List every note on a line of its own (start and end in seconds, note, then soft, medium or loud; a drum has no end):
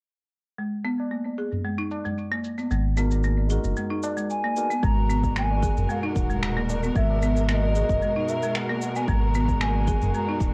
0.58 0.72 G#3 medium
0.58 cabasa soft
0.85 0.93 B3 medium
0.85 cabasa medium
0.99 tabla na soft
0.99 cabasa soft
1.11 1.25 A#3 medium
1.11 cabasa soft
1.26 tabla tin soft
1.38 1.63 G#4 medium
1.38 cabasa medium
1.52 tabla ge medium
1.52 cabasa soft
1.65 1.78 G#3 medium
1.65 cabasa soft
1.78 2.04 D#4 medium
1.91 tabla na medium
1.91 cabasa medium
2.05 2.12 G#3 medium
2.05 tabla ge medium
2.05 cabasa soft
2.18 cabasa soft
2.32 2.44 A#3 medium
2.32 tabla tin medium
2.44 tabla tin soft
2.44 cabasa medium
2.58 2.70 B3 medium
2.58 tabla tin medium
2.58 cabasa soft
2.71 3.58 G#1 medium
2.71 2.84 G#3 medium
2.71 cabasa soft
2.97 3.47 G#3 medium
2.97 3.05 B3 loud
2.97 3.48 D#4 medium
2.97 3.48 F#4 medium
2.97 3.48 A#4 medium
2.97 cabasa medium
3.11 tabla na soft
3.11 cabasa soft
3.24 3.37 A#3 medium
3.24 cabasa soft
3.38 tabla tin soft
3.49 4.53 G#3 medium
3.49 4.54 D#4 medium
3.49 4.54 F#4 medium
3.49 3.76 G#4 medium
3.49 4.55 A#4 medium
3.49 cabasa medium
3.64 3.73 F#1 loud
3.64 tabla ge medium
3.64 cabasa soft
3.77 3.90 G#3 medium
3.77 cabasa soft
3.91 4.16 D#4 medium
4.03 tabla na medium
4.03 cabasa medium
4.17 4.25 G#3 medium
4.17 cabasa soft
4.30 4.85 G#5 loud
4.30 cabasa soft
4.44 4.56 A#3 medium
4.44 tabla tin medium
4.56 4.71 G#3 medium
4.56 4.72 B3 medium
4.56 4.72 D#4 medium
4.56 4.72 F#4 medium
4.56 4.72 A#4 medium
4.56 tabla na soft
4.56 cabasa medium
4.70 4.82 B3 medium
4.70 tabla tin soft
4.70 cabasa soft
4.83 5.70 G#1 medium
4.83 10.54 B2 medium
4.83 4.96 G#3 medium
4.83 10.54 G#3 medium
4.83 10.54 F#4 medium
4.83 10.54 A#4 medium
4.83 5.37 A#5 loud
4.83 kick loud
4.83 cabasa soft
5.10 5.18 B3 medium
5.10 cabasa medium
5.24 kick medium
5.24 tabla na soft
5.24 cabasa soft
5.36 5.50 A#3 medium
5.36 5.91 G#5 loud
5.36 finger snap medium
5.36 cabasa soft
5.51 tabla tin medium
5.62 5.88 G#4 medium
5.62 kick medium
5.62 cabasa medium
5.77 5.86 F#1 loud
5.77 tabla ge medium
5.77 cabasa soft
5.89 6.03 G#3 medium
5.89 6.98 F#5 loud
5.89 cabasa soft
6.03 6.29 D#4 loud
6.03 tabla na soft
6.16 6.90 D#1 loud
6.16 kick loud
6.16 cabasa medium
6.30 6.37 G#3 medium
6.30 tabla ge medium
6.30 cabasa soft
6.43 finger snap medium
6.43 cabasa soft
6.57 6.69 A#3 medium
6.57 tabla tin medium
6.69 tabla na medium
6.69 tabla tin medium
6.69 cabasa medium
6.83 6.95 B3 medium
6.83 tabla tin medium
6.83 cabasa soft
6.95 7.83 G#1 loud
6.95 7.09 G#3 medium
6.95 7.49 E5 medium
6.95 kick loud
6.95 cabasa soft
7.10 tabla na medium
7.22 7.30 B3 loud
7.22 cabasa medium
7.36 tabla na soft
7.36 cabasa soft
7.49 7.62 A#3 medium
7.49 7.54 E5 medium
7.49 finger snap loud
7.49 cabasa soft
7.53 8.31 D#5 medium
7.63 tabla tin soft
7.75 8.01 G#4 medium
7.75 cabasa medium
7.89 7.98 F#1 loud
7.89 kick medium
7.89 tabla ge medium
7.89 cabasa soft
8.02 8.15 G#3 medium
8.02 cabasa soft
8.16 8.41 D#4 medium
8.29 8.57 E5 medium
8.29 cabasa medium
8.43 8.50 G#3 medium
8.43 cabasa soft
8.55 8.97 F#5 medium
8.55 finger snap medium
8.55 cabasa soft
8.69 8.81 A#3 medium
8.69 tabla tin medium
8.82 cabasa medium
8.96 9.07 B3 medium
8.96 9.07 G#5 medium
8.96 tabla tin medium
8.96 cabasa soft
9.08 9.95 G#1 medium
9.08 9.22 G#3 medium
9.08 9.63 A#5 loud
9.08 kick loud
9.08 cabasa soft
9.35 9.43 B3 loud
9.35 cabasa medium
9.48 kick medium
9.48 tabla na soft
9.48 cabasa soft
9.61 9.75 A#3 medium
9.61 10.14 G#5 medium
9.61 finger snap medium
9.61 cabasa soft
9.75 tabla tin soft
9.87 10.13 G#4 medium
9.87 kick loud
9.87 cabasa medium
10.02 10.11 F#1 loud
10.02 tabla ge medium
10.02 cabasa soft
10.14 10.28 G#3 medium
10.14 10.39 A#5 medium
10.14 cabasa soft
10.28 10.54 D#4 medium
10.28 tabla na soft
10.40 10.54 D#1 loud
10.40 kick loud
10.40 cabasa medium